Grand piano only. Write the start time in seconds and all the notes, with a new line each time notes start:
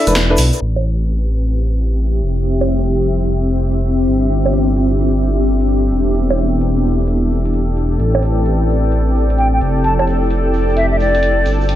0.07 D4 E4 A4 B4
0.30 D4 E4 A4 B4